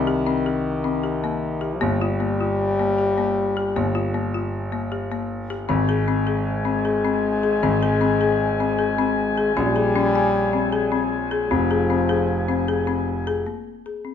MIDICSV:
0, 0, Header, 1, 5, 480
1, 0, Start_track
1, 0, Key_signature, -4, "minor"
1, 0, Tempo, 388350
1, 2246, Time_signature, 5, 2, 24, 8
1, 17482, End_track
2, 0, Start_track
2, 0, Title_t, "Marimba"
2, 0, Program_c, 0, 12
2, 89, Note_on_c, 0, 67, 73
2, 294, Note_off_c, 0, 67, 0
2, 328, Note_on_c, 0, 60, 76
2, 533, Note_off_c, 0, 60, 0
2, 572, Note_on_c, 0, 67, 65
2, 979, Note_off_c, 0, 67, 0
2, 1043, Note_on_c, 0, 60, 72
2, 1249, Note_off_c, 0, 60, 0
2, 1280, Note_on_c, 0, 67, 61
2, 1487, Note_off_c, 0, 67, 0
2, 1530, Note_on_c, 0, 58, 71
2, 1938, Note_off_c, 0, 58, 0
2, 1991, Note_on_c, 0, 67, 68
2, 2202, Note_off_c, 0, 67, 0
2, 2236, Note_on_c, 0, 58, 92
2, 2445, Note_off_c, 0, 58, 0
2, 2490, Note_on_c, 0, 65, 78
2, 2692, Note_off_c, 0, 65, 0
2, 2723, Note_on_c, 0, 58, 78
2, 2928, Note_off_c, 0, 58, 0
2, 2973, Note_on_c, 0, 65, 68
2, 3378, Note_off_c, 0, 65, 0
2, 3453, Note_on_c, 0, 58, 70
2, 3653, Note_off_c, 0, 58, 0
2, 3689, Note_on_c, 0, 67, 63
2, 3891, Note_off_c, 0, 67, 0
2, 3927, Note_on_c, 0, 58, 80
2, 4334, Note_off_c, 0, 58, 0
2, 4410, Note_on_c, 0, 67, 66
2, 4611, Note_off_c, 0, 67, 0
2, 4650, Note_on_c, 0, 58, 88
2, 4850, Note_off_c, 0, 58, 0
2, 4882, Note_on_c, 0, 65, 75
2, 5086, Note_off_c, 0, 65, 0
2, 5120, Note_on_c, 0, 58, 71
2, 5324, Note_off_c, 0, 58, 0
2, 5368, Note_on_c, 0, 65, 68
2, 5773, Note_off_c, 0, 65, 0
2, 5839, Note_on_c, 0, 58, 65
2, 6043, Note_off_c, 0, 58, 0
2, 6079, Note_on_c, 0, 67, 68
2, 6282, Note_off_c, 0, 67, 0
2, 6322, Note_on_c, 0, 58, 71
2, 6729, Note_off_c, 0, 58, 0
2, 6801, Note_on_c, 0, 67, 73
2, 7003, Note_off_c, 0, 67, 0
2, 7030, Note_on_c, 0, 60, 87
2, 7237, Note_off_c, 0, 60, 0
2, 7277, Note_on_c, 0, 68, 73
2, 7481, Note_off_c, 0, 68, 0
2, 7515, Note_on_c, 0, 60, 80
2, 7720, Note_off_c, 0, 60, 0
2, 7747, Note_on_c, 0, 68, 69
2, 8159, Note_off_c, 0, 68, 0
2, 8222, Note_on_c, 0, 60, 71
2, 8432, Note_off_c, 0, 60, 0
2, 8467, Note_on_c, 0, 68, 70
2, 8674, Note_off_c, 0, 68, 0
2, 8708, Note_on_c, 0, 60, 72
2, 9119, Note_off_c, 0, 60, 0
2, 9188, Note_on_c, 0, 68, 67
2, 9395, Note_off_c, 0, 68, 0
2, 9428, Note_on_c, 0, 60, 87
2, 9635, Note_off_c, 0, 60, 0
2, 9673, Note_on_c, 0, 68, 73
2, 9877, Note_off_c, 0, 68, 0
2, 9902, Note_on_c, 0, 60, 81
2, 10111, Note_off_c, 0, 60, 0
2, 10147, Note_on_c, 0, 68, 70
2, 10558, Note_off_c, 0, 68, 0
2, 10633, Note_on_c, 0, 60, 67
2, 10837, Note_off_c, 0, 60, 0
2, 10860, Note_on_c, 0, 68, 71
2, 11070, Note_off_c, 0, 68, 0
2, 11106, Note_on_c, 0, 60, 78
2, 11518, Note_off_c, 0, 60, 0
2, 11588, Note_on_c, 0, 68, 76
2, 11794, Note_off_c, 0, 68, 0
2, 11826, Note_on_c, 0, 61, 89
2, 12032, Note_off_c, 0, 61, 0
2, 12060, Note_on_c, 0, 68, 74
2, 12269, Note_off_c, 0, 68, 0
2, 12306, Note_on_c, 0, 61, 86
2, 12513, Note_off_c, 0, 61, 0
2, 12549, Note_on_c, 0, 80, 74
2, 12959, Note_off_c, 0, 80, 0
2, 13018, Note_on_c, 0, 60, 75
2, 13227, Note_off_c, 0, 60, 0
2, 13256, Note_on_c, 0, 68, 73
2, 13467, Note_off_c, 0, 68, 0
2, 13497, Note_on_c, 0, 60, 79
2, 13912, Note_off_c, 0, 60, 0
2, 13983, Note_on_c, 0, 68, 72
2, 14190, Note_off_c, 0, 68, 0
2, 14225, Note_on_c, 0, 60, 88
2, 14432, Note_off_c, 0, 60, 0
2, 14471, Note_on_c, 0, 68, 74
2, 14676, Note_off_c, 0, 68, 0
2, 14710, Note_on_c, 0, 60, 78
2, 14915, Note_off_c, 0, 60, 0
2, 14946, Note_on_c, 0, 68, 72
2, 15359, Note_off_c, 0, 68, 0
2, 15433, Note_on_c, 0, 60, 77
2, 15638, Note_off_c, 0, 60, 0
2, 15677, Note_on_c, 0, 68, 70
2, 15880, Note_off_c, 0, 68, 0
2, 15910, Note_on_c, 0, 60, 74
2, 16323, Note_off_c, 0, 60, 0
2, 16403, Note_on_c, 0, 68, 73
2, 16606, Note_off_c, 0, 68, 0
2, 16643, Note_on_c, 0, 58, 56
2, 17054, Note_off_c, 0, 58, 0
2, 17130, Note_on_c, 0, 68, 52
2, 17333, Note_off_c, 0, 68, 0
2, 17362, Note_on_c, 0, 60, 50
2, 17482, Note_off_c, 0, 60, 0
2, 17482, End_track
3, 0, Start_track
3, 0, Title_t, "Woodwind section"
3, 0, Program_c, 1, 71
3, 7029, Note_on_c, 1, 53, 68
3, 7031, Note_on_c, 1, 60, 62
3, 7033, Note_on_c, 1, 80, 74
3, 11779, Note_off_c, 1, 53, 0
3, 11780, Note_off_c, 1, 60, 0
3, 11827, Note_on_c, 1, 60, 66
3, 11831, Note_on_c, 1, 49, 74
3, 14204, Note_off_c, 1, 60, 0
3, 14206, Note_off_c, 1, 49, 0
3, 14240, Note_on_c, 1, 53, 71
3, 14240, Note_on_c, 1, 63, 64
3, 16587, Note_off_c, 1, 80, 0
3, 16618, Note_off_c, 1, 53, 0
3, 16618, Note_off_c, 1, 63, 0
3, 17482, End_track
4, 0, Start_track
4, 0, Title_t, "French horn"
4, 0, Program_c, 2, 60
4, 0, Note_on_c, 2, 51, 80
4, 2220, Note_on_c, 2, 55, 102
4, 2239, Note_off_c, 2, 51, 0
4, 6451, Note_off_c, 2, 55, 0
4, 7025, Note_on_c, 2, 56, 99
4, 11775, Note_off_c, 2, 56, 0
4, 11817, Note_on_c, 2, 55, 109
4, 13840, Note_off_c, 2, 55, 0
4, 14141, Note_on_c, 2, 55, 53
4, 14239, Note_on_c, 2, 53, 88
4, 14257, Note_off_c, 2, 55, 0
4, 16400, Note_off_c, 2, 53, 0
4, 17482, End_track
5, 0, Start_track
5, 0, Title_t, "Grand piano"
5, 0, Program_c, 3, 0
5, 0, Note_on_c, 3, 36, 76
5, 2194, Note_off_c, 3, 36, 0
5, 2242, Note_on_c, 3, 31, 85
5, 4590, Note_off_c, 3, 31, 0
5, 4645, Note_on_c, 3, 31, 80
5, 6990, Note_off_c, 3, 31, 0
5, 7036, Note_on_c, 3, 32, 82
5, 9384, Note_off_c, 3, 32, 0
5, 9426, Note_on_c, 3, 32, 79
5, 11779, Note_off_c, 3, 32, 0
5, 11824, Note_on_c, 3, 34, 80
5, 14178, Note_off_c, 3, 34, 0
5, 14224, Note_on_c, 3, 29, 86
5, 16586, Note_off_c, 3, 29, 0
5, 17482, End_track
0, 0, End_of_file